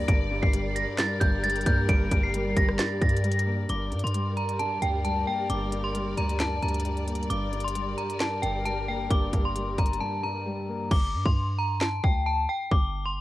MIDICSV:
0, 0, Header, 1, 6, 480
1, 0, Start_track
1, 0, Key_signature, -2, "minor"
1, 0, Tempo, 451128
1, 88, Time_signature, 4, 2, 24, 8
1, 14053, End_track
2, 0, Start_track
2, 0, Title_t, "Synth bell"
2, 0, Program_c, 0, 98
2, 85, Note_on_c, 0, 98, 93
2, 432, Note_off_c, 0, 98, 0
2, 451, Note_on_c, 0, 96, 74
2, 785, Note_off_c, 0, 96, 0
2, 805, Note_on_c, 0, 94, 71
2, 1024, Note_off_c, 0, 94, 0
2, 1045, Note_on_c, 0, 93, 80
2, 1264, Note_off_c, 0, 93, 0
2, 1281, Note_on_c, 0, 91, 73
2, 1502, Note_off_c, 0, 91, 0
2, 1527, Note_on_c, 0, 93, 95
2, 1745, Note_off_c, 0, 93, 0
2, 1770, Note_on_c, 0, 91, 80
2, 1987, Note_off_c, 0, 91, 0
2, 2011, Note_on_c, 0, 98, 108
2, 2355, Note_off_c, 0, 98, 0
2, 2376, Note_on_c, 0, 96, 77
2, 2708, Note_off_c, 0, 96, 0
2, 2733, Note_on_c, 0, 94, 76
2, 2949, Note_off_c, 0, 94, 0
2, 2966, Note_on_c, 0, 93, 95
2, 3185, Note_off_c, 0, 93, 0
2, 3211, Note_on_c, 0, 94, 85
2, 3887, Note_off_c, 0, 94, 0
2, 3932, Note_on_c, 0, 86, 93
2, 4276, Note_off_c, 0, 86, 0
2, 4296, Note_on_c, 0, 84, 76
2, 4628, Note_off_c, 0, 84, 0
2, 4649, Note_on_c, 0, 82, 68
2, 4866, Note_off_c, 0, 82, 0
2, 4886, Note_on_c, 0, 81, 75
2, 5105, Note_off_c, 0, 81, 0
2, 5128, Note_on_c, 0, 79, 74
2, 5346, Note_off_c, 0, 79, 0
2, 5368, Note_on_c, 0, 81, 81
2, 5586, Note_off_c, 0, 81, 0
2, 5610, Note_on_c, 0, 79, 86
2, 5827, Note_off_c, 0, 79, 0
2, 5850, Note_on_c, 0, 86, 89
2, 6194, Note_off_c, 0, 86, 0
2, 6212, Note_on_c, 0, 84, 72
2, 6546, Note_off_c, 0, 84, 0
2, 6572, Note_on_c, 0, 82, 72
2, 6788, Note_off_c, 0, 82, 0
2, 6808, Note_on_c, 0, 81, 89
2, 7026, Note_off_c, 0, 81, 0
2, 7050, Note_on_c, 0, 82, 72
2, 7727, Note_off_c, 0, 82, 0
2, 7766, Note_on_c, 0, 86, 91
2, 8113, Note_off_c, 0, 86, 0
2, 8133, Note_on_c, 0, 84, 69
2, 8466, Note_off_c, 0, 84, 0
2, 8487, Note_on_c, 0, 82, 65
2, 8706, Note_off_c, 0, 82, 0
2, 8726, Note_on_c, 0, 81, 75
2, 8945, Note_off_c, 0, 81, 0
2, 8961, Note_on_c, 0, 79, 71
2, 9182, Note_off_c, 0, 79, 0
2, 9208, Note_on_c, 0, 81, 87
2, 9426, Note_off_c, 0, 81, 0
2, 9452, Note_on_c, 0, 79, 75
2, 9668, Note_off_c, 0, 79, 0
2, 9691, Note_on_c, 0, 86, 97
2, 10035, Note_off_c, 0, 86, 0
2, 10057, Note_on_c, 0, 84, 73
2, 10388, Note_off_c, 0, 84, 0
2, 10412, Note_on_c, 0, 82, 75
2, 10628, Note_off_c, 0, 82, 0
2, 10645, Note_on_c, 0, 81, 91
2, 10864, Note_off_c, 0, 81, 0
2, 10890, Note_on_c, 0, 82, 83
2, 11567, Note_off_c, 0, 82, 0
2, 11612, Note_on_c, 0, 86, 95
2, 11956, Note_off_c, 0, 86, 0
2, 11975, Note_on_c, 0, 84, 77
2, 12307, Note_off_c, 0, 84, 0
2, 12327, Note_on_c, 0, 82, 70
2, 12545, Note_off_c, 0, 82, 0
2, 12566, Note_on_c, 0, 81, 75
2, 12785, Note_off_c, 0, 81, 0
2, 12808, Note_on_c, 0, 79, 80
2, 13026, Note_off_c, 0, 79, 0
2, 13047, Note_on_c, 0, 81, 85
2, 13266, Note_off_c, 0, 81, 0
2, 13290, Note_on_c, 0, 79, 86
2, 13507, Note_off_c, 0, 79, 0
2, 13529, Note_on_c, 0, 86, 94
2, 13874, Note_off_c, 0, 86, 0
2, 13891, Note_on_c, 0, 84, 74
2, 14053, Note_off_c, 0, 84, 0
2, 14053, End_track
3, 0, Start_track
3, 0, Title_t, "String section"
3, 0, Program_c, 1, 48
3, 0, Note_on_c, 1, 74, 91
3, 89, Note_on_c, 1, 55, 81
3, 89, Note_on_c, 1, 70, 75
3, 90, Note_on_c, 1, 67, 76
3, 3886, Note_off_c, 1, 74, 0
3, 3891, Note_off_c, 1, 55, 0
3, 3891, Note_off_c, 1, 67, 0
3, 3891, Note_off_c, 1, 70, 0
3, 3928, Note_on_c, 1, 70, 71
3, 3929, Note_on_c, 1, 55, 76
3, 3929, Note_on_c, 1, 67, 72
3, 3929, Note_on_c, 1, 74, 85
3, 7730, Note_off_c, 1, 67, 0
3, 7730, Note_off_c, 1, 70, 0
3, 7770, Note_on_c, 1, 67, 74
3, 7770, Note_on_c, 1, 70, 73
3, 11566, Note_off_c, 1, 55, 0
3, 11566, Note_off_c, 1, 74, 0
3, 11571, Note_off_c, 1, 67, 0
3, 11571, Note_off_c, 1, 70, 0
3, 14053, End_track
4, 0, Start_track
4, 0, Title_t, "Felt piano"
4, 0, Program_c, 2, 0
4, 0, Control_c, 2, 64, 127
4, 0, Note_on_c, 2, 43, 73
4, 0, Note_on_c, 2, 55, 92
4, 0, Note_on_c, 2, 58, 84
4, 89, Note_off_c, 2, 43, 0
4, 89, Note_on_c, 2, 43, 87
4, 103, Control_c, 2, 64, 0
4, 110, Note_off_c, 2, 55, 0
4, 111, Note_off_c, 2, 58, 0
4, 276, Control_c, 2, 64, 127
4, 313, Note_off_c, 2, 43, 0
4, 329, Note_on_c, 2, 43, 73
4, 569, Note_on_c, 2, 55, 80
4, 1033, Note_off_c, 2, 43, 0
4, 1049, Note_on_c, 2, 43, 76
4, 1273, Note_off_c, 2, 43, 0
4, 1289, Note_on_c, 2, 43, 76
4, 1513, Note_off_c, 2, 55, 0
4, 1529, Note_on_c, 2, 55, 89
4, 1768, Note_on_c, 2, 58, 91
4, 1992, Note_off_c, 2, 43, 0
4, 2008, Note_on_c, 2, 43, 94
4, 2233, Note_off_c, 2, 43, 0
4, 2249, Note_on_c, 2, 43, 72
4, 2472, Note_off_c, 2, 55, 0
4, 2488, Note_on_c, 2, 55, 78
4, 2952, Note_off_c, 2, 43, 0
4, 2968, Note_on_c, 2, 43, 77
4, 2969, Note_off_c, 2, 58, 0
4, 3192, Note_off_c, 2, 43, 0
4, 3208, Note_on_c, 2, 43, 76
4, 3432, Note_off_c, 2, 55, 0
4, 3448, Note_on_c, 2, 55, 86
4, 3688, Note_on_c, 2, 58, 84
4, 3912, Note_off_c, 2, 43, 0
4, 3928, Note_off_c, 2, 55, 0
4, 3928, Note_off_c, 2, 58, 0
4, 3928, Note_on_c, 2, 43, 81
4, 3942, Control_c, 2, 64, 0
4, 4151, Control_c, 2, 64, 127
4, 4152, Note_off_c, 2, 43, 0
4, 4168, Note_on_c, 2, 43, 65
4, 4408, Note_on_c, 2, 55, 75
4, 4873, Note_off_c, 2, 43, 0
4, 4889, Note_on_c, 2, 43, 76
4, 5113, Note_off_c, 2, 43, 0
4, 5129, Note_on_c, 2, 43, 69
4, 5353, Note_off_c, 2, 55, 0
4, 5369, Note_on_c, 2, 55, 94
4, 5609, Note_on_c, 2, 58, 81
4, 5834, Note_off_c, 2, 43, 0
4, 5850, Note_on_c, 2, 43, 89
4, 6073, Note_off_c, 2, 43, 0
4, 6089, Note_on_c, 2, 43, 64
4, 6313, Note_off_c, 2, 55, 0
4, 6329, Note_on_c, 2, 55, 77
4, 6793, Note_off_c, 2, 43, 0
4, 6809, Note_off_c, 2, 58, 0
4, 6809, Note_on_c, 2, 43, 67
4, 7033, Note_off_c, 2, 43, 0
4, 7049, Note_on_c, 2, 43, 69
4, 7274, Note_off_c, 2, 55, 0
4, 7290, Note_on_c, 2, 55, 85
4, 7529, Note_on_c, 2, 58, 77
4, 7754, Note_off_c, 2, 43, 0
4, 7769, Note_off_c, 2, 55, 0
4, 7769, Note_off_c, 2, 58, 0
4, 7770, Note_on_c, 2, 43, 88
4, 7785, Control_c, 2, 64, 0
4, 7944, Control_c, 2, 64, 127
4, 7994, Note_off_c, 2, 43, 0
4, 8010, Note_on_c, 2, 43, 70
4, 8249, Note_on_c, 2, 55, 74
4, 8713, Note_off_c, 2, 43, 0
4, 8729, Note_on_c, 2, 43, 72
4, 8954, Note_off_c, 2, 43, 0
4, 8970, Note_on_c, 2, 43, 73
4, 9194, Note_off_c, 2, 55, 0
4, 9210, Note_on_c, 2, 55, 84
4, 9449, Note_on_c, 2, 58, 86
4, 9672, Note_off_c, 2, 43, 0
4, 9688, Note_on_c, 2, 43, 88
4, 9912, Note_off_c, 2, 43, 0
4, 9928, Note_on_c, 2, 43, 71
4, 10152, Note_off_c, 2, 55, 0
4, 10168, Note_on_c, 2, 55, 74
4, 10632, Note_off_c, 2, 43, 0
4, 10648, Note_on_c, 2, 43, 73
4, 10649, Note_off_c, 2, 58, 0
4, 10872, Note_off_c, 2, 43, 0
4, 10888, Note_on_c, 2, 43, 75
4, 11112, Note_off_c, 2, 55, 0
4, 11128, Note_on_c, 2, 55, 86
4, 11368, Note_on_c, 2, 58, 78
4, 11608, Note_off_c, 2, 58, 0
4, 11609, Note_off_c, 2, 43, 0
4, 11609, Note_off_c, 2, 55, 0
4, 11624, Control_c, 2, 64, 0
4, 11842, Control_c, 2, 64, 127
4, 14053, End_track
5, 0, Start_track
5, 0, Title_t, "808-style bass"
5, 0, Program_c, 3, 38
5, 89, Note_on_c, 3, 31, 115
5, 442, Note_off_c, 3, 31, 0
5, 455, Note_on_c, 3, 31, 105
5, 917, Note_off_c, 3, 31, 0
5, 1288, Note_on_c, 3, 31, 103
5, 1749, Note_off_c, 3, 31, 0
5, 1769, Note_on_c, 3, 43, 101
5, 1999, Note_off_c, 3, 43, 0
5, 2009, Note_on_c, 3, 31, 108
5, 2239, Note_off_c, 3, 31, 0
5, 2250, Note_on_c, 3, 31, 103
5, 2710, Note_off_c, 3, 31, 0
5, 2729, Note_on_c, 3, 31, 107
5, 2959, Note_off_c, 3, 31, 0
5, 3208, Note_on_c, 3, 43, 108
5, 3900, Note_off_c, 3, 43, 0
5, 3929, Note_on_c, 3, 31, 106
5, 4168, Note_on_c, 3, 43, 98
5, 4184, Note_off_c, 3, 31, 0
5, 4289, Note_off_c, 3, 43, 0
5, 4295, Note_on_c, 3, 43, 97
5, 5095, Note_off_c, 3, 43, 0
5, 5128, Note_on_c, 3, 38, 105
5, 5589, Note_off_c, 3, 38, 0
5, 5848, Note_on_c, 3, 31, 109
5, 6540, Note_off_c, 3, 31, 0
5, 6569, Note_on_c, 3, 38, 103
5, 7030, Note_off_c, 3, 38, 0
5, 7049, Note_on_c, 3, 38, 104
5, 7740, Note_off_c, 3, 38, 0
5, 7769, Note_on_c, 3, 31, 110
5, 8460, Note_off_c, 3, 31, 0
5, 8969, Note_on_c, 3, 31, 101
5, 9660, Note_off_c, 3, 31, 0
5, 9689, Note_on_c, 3, 31, 109
5, 9919, Note_off_c, 3, 31, 0
5, 9930, Note_on_c, 3, 31, 104
5, 10390, Note_off_c, 3, 31, 0
5, 10409, Note_on_c, 3, 31, 104
5, 10639, Note_off_c, 3, 31, 0
5, 11609, Note_on_c, 3, 31, 105
5, 11848, Note_on_c, 3, 43, 97
5, 11864, Note_off_c, 3, 31, 0
5, 11969, Note_off_c, 3, 43, 0
5, 11976, Note_on_c, 3, 43, 103
5, 12775, Note_off_c, 3, 43, 0
5, 12808, Note_on_c, 3, 38, 103
5, 13269, Note_off_c, 3, 38, 0
5, 13529, Note_on_c, 3, 31, 110
5, 14053, Note_off_c, 3, 31, 0
5, 14053, End_track
6, 0, Start_track
6, 0, Title_t, "Drums"
6, 89, Note_on_c, 9, 36, 115
6, 90, Note_on_c, 9, 42, 91
6, 195, Note_off_c, 9, 36, 0
6, 196, Note_off_c, 9, 42, 0
6, 456, Note_on_c, 9, 36, 93
6, 562, Note_off_c, 9, 36, 0
6, 569, Note_on_c, 9, 42, 87
6, 676, Note_off_c, 9, 42, 0
6, 809, Note_on_c, 9, 42, 74
6, 915, Note_off_c, 9, 42, 0
6, 1048, Note_on_c, 9, 38, 108
6, 1049, Note_on_c, 9, 39, 90
6, 1049, Note_on_c, 9, 42, 76
6, 1154, Note_off_c, 9, 38, 0
6, 1155, Note_off_c, 9, 42, 0
6, 1156, Note_off_c, 9, 39, 0
6, 1288, Note_on_c, 9, 36, 101
6, 1289, Note_on_c, 9, 42, 73
6, 1395, Note_off_c, 9, 36, 0
6, 1395, Note_off_c, 9, 42, 0
6, 1529, Note_on_c, 9, 42, 64
6, 1593, Note_off_c, 9, 42, 0
6, 1593, Note_on_c, 9, 42, 55
6, 1656, Note_off_c, 9, 42, 0
6, 1656, Note_on_c, 9, 42, 46
6, 1712, Note_off_c, 9, 42, 0
6, 1712, Note_on_c, 9, 42, 37
6, 1768, Note_off_c, 9, 42, 0
6, 1768, Note_on_c, 9, 42, 81
6, 1769, Note_on_c, 9, 36, 100
6, 1875, Note_off_c, 9, 36, 0
6, 1875, Note_off_c, 9, 42, 0
6, 2008, Note_on_c, 9, 42, 89
6, 2009, Note_on_c, 9, 36, 121
6, 2115, Note_off_c, 9, 36, 0
6, 2115, Note_off_c, 9, 42, 0
6, 2248, Note_on_c, 9, 42, 79
6, 2250, Note_on_c, 9, 36, 92
6, 2355, Note_off_c, 9, 42, 0
6, 2356, Note_off_c, 9, 36, 0
6, 2489, Note_on_c, 9, 42, 89
6, 2595, Note_off_c, 9, 42, 0
6, 2729, Note_on_c, 9, 36, 100
6, 2729, Note_on_c, 9, 42, 81
6, 2835, Note_off_c, 9, 36, 0
6, 2835, Note_off_c, 9, 42, 0
6, 2857, Note_on_c, 9, 37, 87
6, 2963, Note_off_c, 9, 37, 0
6, 2968, Note_on_c, 9, 38, 111
6, 2969, Note_on_c, 9, 39, 86
6, 2969, Note_on_c, 9, 42, 81
6, 3074, Note_off_c, 9, 38, 0
6, 3075, Note_off_c, 9, 39, 0
6, 3075, Note_off_c, 9, 42, 0
6, 3208, Note_on_c, 9, 36, 99
6, 3209, Note_on_c, 9, 42, 45
6, 3289, Note_off_c, 9, 42, 0
6, 3289, Note_on_c, 9, 42, 52
6, 3315, Note_off_c, 9, 36, 0
6, 3369, Note_off_c, 9, 42, 0
6, 3369, Note_on_c, 9, 42, 59
6, 3448, Note_off_c, 9, 42, 0
6, 3448, Note_on_c, 9, 42, 62
6, 3529, Note_off_c, 9, 42, 0
6, 3529, Note_on_c, 9, 42, 70
6, 3609, Note_off_c, 9, 42, 0
6, 3609, Note_on_c, 9, 42, 73
6, 3715, Note_off_c, 9, 42, 0
6, 3929, Note_on_c, 9, 42, 84
6, 4035, Note_off_c, 9, 42, 0
6, 4169, Note_on_c, 9, 42, 47
6, 4249, Note_off_c, 9, 42, 0
6, 4249, Note_on_c, 9, 42, 64
6, 4329, Note_off_c, 9, 42, 0
6, 4329, Note_on_c, 9, 42, 81
6, 4409, Note_off_c, 9, 42, 0
6, 4409, Note_on_c, 9, 42, 83
6, 4515, Note_off_c, 9, 42, 0
6, 4649, Note_on_c, 9, 42, 43
6, 4755, Note_off_c, 9, 42, 0
6, 4776, Note_on_c, 9, 42, 75
6, 4882, Note_off_c, 9, 42, 0
6, 4889, Note_on_c, 9, 42, 67
6, 4995, Note_off_c, 9, 42, 0
6, 5128, Note_on_c, 9, 42, 74
6, 5235, Note_off_c, 9, 42, 0
6, 5368, Note_on_c, 9, 42, 58
6, 5475, Note_off_c, 9, 42, 0
6, 5848, Note_on_c, 9, 42, 86
6, 5955, Note_off_c, 9, 42, 0
6, 6088, Note_on_c, 9, 42, 82
6, 6195, Note_off_c, 9, 42, 0
6, 6329, Note_on_c, 9, 42, 81
6, 6435, Note_off_c, 9, 42, 0
6, 6568, Note_on_c, 9, 42, 61
6, 6675, Note_off_c, 9, 42, 0
6, 6696, Note_on_c, 9, 42, 59
6, 6802, Note_off_c, 9, 42, 0
6, 6808, Note_on_c, 9, 38, 106
6, 6809, Note_on_c, 9, 39, 83
6, 6809, Note_on_c, 9, 42, 69
6, 6914, Note_off_c, 9, 38, 0
6, 6915, Note_off_c, 9, 39, 0
6, 6915, Note_off_c, 9, 42, 0
6, 7049, Note_on_c, 9, 42, 42
6, 7112, Note_off_c, 9, 42, 0
6, 7112, Note_on_c, 9, 42, 54
6, 7176, Note_off_c, 9, 42, 0
6, 7176, Note_on_c, 9, 42, 62
6, 7232, Note_off_c, 9, 42, 0
6, 7232, Note_on_c, 9, 42, 74
6, 7289, Note_off_c, 9, 42, 0
6, 7289, Note_on_c, 9, 42, 60
6, 7395, Note_off_c, 9, 42, 0
6, 7416, Note_on_c, 9, 42, 35
6, 7522, Note_off_c, 9, 42, 0
6, 7529, Note_on_c, 9, 42, 72
6, 7610, Note_off_c, 9, 42, 0
6, 7610, Note_on_c, 9, 42, 59
6, 7689, Note_off_c, 9, 42, 0
6, 7689, Note_on_c, 9, 42, 43
6, 7769, Note_off_c, 9, 42, 0
6, 7769, Note_on_c, 9, 42, 84
6, 7876, Note_off_c, 9, 42, 0
6, 8010, Note_on_c, 9, 42, 49
6, 8089, Note_off_c, 9, 42, 0
6, 8089, Note_on_c, 9, 42, 63
6, 8169, Note_off_c, 9, 42, 0
6, 8169, Note_on_c, 9, 42, 81
6, 8249, Note_off_c, 9, 42, 0
6, 8249, Note_on_c, 9, 42, 84
6, 8356, Note_off_c, 9, 42, 0
6, 8489, Note_on_c, 9, 42, 46
6, 8596, Note_off_c, 9, 42, 0
6, 8616, Note_on_c, 9, 42, 73
6, 8722, Note_off_c, 9, 42, 0
6, 8728, Note_on_c, 9, 38, 107
6, 8729, Note_on_c, 9, 39, 85
6, 8729, Note_on_c, 9, 42, 67
6, 8835, Note_off_c, 9, 38, 0
6, 8836, Note_off_c, 9, 39, 0
6, 8836, Note_off_c, 9, 42, 0
6, 8969, Note_on_c, 9, 42, 75
6, 9075, Note_off_c, 9, 42, 0
6, 9209, Note_on_c, 9, 42, 60
6, 9316, Note_off_c, 9, 42, 0
6, 9689, Note_on_c, 9, 36, 112
6, 9689, Note_on_c, 9, 42, 86
6, 9795, Note_off_c, 9, 36, 0
6, 9795, Note_off_c, 9, 42, 0
6, 9929, Note_on_c, 9, 42, 84
6, 9930, Note_on_c, 9, 36, 89
6, 10035, Note_off_c, 9, 42, 0
6, 10036, Note_off_c, 9, 36, 0
6, 10169, Note_on_c, 9, 42, 88
6, 10275, Note_off_c, 9, 42, 0
6, 10408, Note_on_c, 9, 42, 62
6, 10409, Note_on_c, 9, 36, 95
6, 10489, Note_off_c, 9, 42, 0
6, 10489, Note_on_c, 9, 42, 59
6, 10515, Note_off_c, 9, 36, 0
6, 10569, Note_off_c, 9, 42, 0
6, 10569, Note_on_c, 9, 42, 60
6, 10675, Note_off_c, 9, 42, 0
6, 11609, Note_on_c, 9, 36, 120
6, 11609, Note_on_c, 9, 49, 96
6, 11715, Note_off_c, 9, 36, 0
6, 11715, Note_off_c, 9, 49, 0
6, 11975, Note_on_c, 9, 36, 91
6, 12082, Note_off_c, 9, 36, 0
6, 12568, Note_on_c, 9, 38, 105
6, 12569, Note_on_c, 9, 39, 86
6, 12674, Note_off_c, 9, 38, 0
6, 12675, Note_off_c, 9, 39, 0
6, 12808, Note_on_c, 9, 36, 99
6, 12915, Note_off_c, 9, 36, 0
6, 13529, Note_on_c, 9, 36, 116
6, 13635, Note_off_c, 9, 36, 0
6, 14053, End_track
0, 0, End_of_file